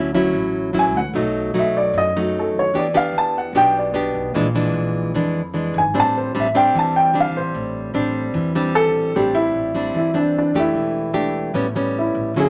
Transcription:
Already playing: D2 D3 F#3 C#4 E4
0.15 F#3 C#4 E4
0.33 A1 A2
0.73 F#3 C#4 E4
0.79 G#5
0.94 D2 F#5
1.13 B1 B2 F#3 A3 D#4
1.54 B1 F#3 A3 D#4
1.59 E5
1.77 D5
1.94 F#2
1.98 D#5
2.16 F#3 A3 D#4 F#4
2.39 A4
2.53 D#2
2.59 C#5
2.74 E2 E3 B3 D4 G4 D5
2.94 B3 D4 G4 F5
3.13 E2
3.18 A5
3.38 F#5
3.53 B1 B2 B3 D4 G4
3.57 G5
3.78 D5
3.94 B3 D4 G4
4.15 B1
4.34 A#1 A#2 E3 G#3 D4
4.55 E3 G#3 D4
4.73 A#1
5.14 F2 E3 G#3 D4
5.54 E3 G#3 D4
5.74 G#1
5.78 G#5
5.94 A1 A2 G3 C4 D4
6.00 A5
6.17 C5
6.35 A1 G3 C4 D4
6.40 E5
6.55 G3 C4 D4 G5
6.74 E2 E3
6.79 A5
6.96 G5
7.14 G3 C4 D4
7.20 F5
7.34 A1 C5
7.54 A1 A2
7.94 A1 G3 C4 D4
8.34 E2 E3
8.55 G3 C4 D4
8.75 A4
8.94 A1
9.15 A1 A2 G3 C4 D4 G4
9.35 E4
9.54 A1
9.75 G3 C4 D4
9.94 E2 E3 E4
10.14 G3 C4 D4
10.38 D4
10.54 F1 A3 D4 G4
10.59 E4
10.74 E1 E3
11.13 E1 A3 D4 G4
11.54 A1 A2 G3 B3 C#4
11.76 G3 B3 C#4
11.99 E4
12.15 A1
12.34 D2 D3 F#3 C#4 E4
12.39 G#4

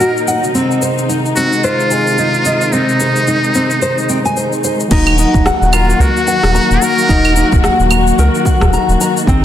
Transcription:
Already playing: A#2 D#3 F#3 D#4 A#4
0.00 F#4, shaker
0.17 shaker
0.28 F#5, shaker
0.44 shaker
0.54 C3 D#3 G#3 C4, shaker
0.71 shaker
0.82 C5, shaker
0.98 shaker
1.09 D#4, shaker
1.26 shaker
1.36 C4 F#4, shaker
1.53 shaker
1.64 F4 C5, shaker
1.80 shaker
1.91 G#4, shaker
2.07 shaker
2.18 D#4, shaker
2.34 shaker
2.45 D#5, shaker
2.61 shaker
2.72 C4 D#4, shaker
2.89 shaker
3.00 C5, shaker
3.16 shaker
3.28 D#4, shaker
3.44 shaker
3.55 C4, shaker
3.71 shaker
3.82 C5, shaker
3.98 shaker
4.09 C4, shaker
4.25 G#5, shaker
4.37 C5, shaker
4.53 shaker
4.64 C5, shaker
4.80 shaker
4.91 D#1 D#3 F#3 A#3 D#4 F#4, kick, crash, shaker
5.07 claves, shaker
5.18 D#4, shaker
5.34 D#1, kick, udu, shaker
5.46 F#5, cross-stick, shaker
5.62 D#1, shaker
5.72 F4 A#5, claves, shaker
5.90 shaker
5.99 C#2 F#4 A#4, udu, shaker
6.17 shaker
6.28 F#5, shaker
6.43 D#1, cross-stick, shaker
6.55 A#5, shaker
6.71 D#1, shaker
6.82 A#4 A#5, shaker
6.98 shaker
7.09 D#1 D#4, kick, shaker
7.25 claves, shaker
7.36 D#4, shaker
7.52 D#1, kick, udu, shaker
7.64 F#5, cross-stick, shaker
7.79 D#1, shaker
7.91 A#5, claves, shaker
8.07 shaker
8.18 C#2 A#4, shaker
8.35 shaker
8.45 F#5, kick, shaker
8.61 D#1, kick, cross-stick, udu, shaker
8.73 A#5, shaker
8.88 D#1, shaker
9.01 A#5, shaker
9.17 shaker
9.27 G#1 C3 G#3 C4 D#4, kick, shaker

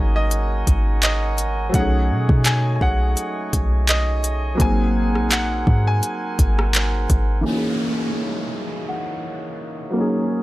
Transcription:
Already playing: G#1 F#3 A#3 C#4 D#4 G#4 A#4 D#5 F#5 G#5 C#6
0.16 D#5
0.31 closed hi-hat
0.67 G#1, kick, closed hi-hat
1.03 D#5, clap, closed hi-hat
1.38 closed hi-hat
1.69 F#3 A3
1.74 B1 A3 C#4 D#4 D#5 F#5, kick, closed hi-hat
1.79 G#4
2.11 B2
2.29 B2, kick
2.45 G#5, clap, closed hi-hat
2.75 G#5
2.81 B1 F#5, kick
3.17 closed hi-hat
3.53 B1, kick, closed hi-hat
3.88 D#5, clap, closed hi-hat
4.24 closed hi-hat
4.55 F#3 A#3
4.60 G#1 C4 D#4 A#4 F#5 G#5 C6, kick, closed hi-hat
4.65 G#4
5.15 A#1, cross-stick
5.31 F#5, clap, closed hi-hat
5.67 G#2, kick
5.87 G#5
6.03 closed hi-hat
6.39 G#1, kick, closed hi-hat
6.59 cross-stick
6.74 clap, closed hi-hat
7.10 G#1, kick, closed hi-hat
7.41 E3 A#3
7.46 C#3 A#3 C#4 D#4 C#5 D#5 G#5, downlifter
7.51 F#4
7.57 G#4
8.89 F#5
9.91 F#3 A#3
9.96 G#2 F#3 C#4 D#4 A#4 C#5
10.00 G#4

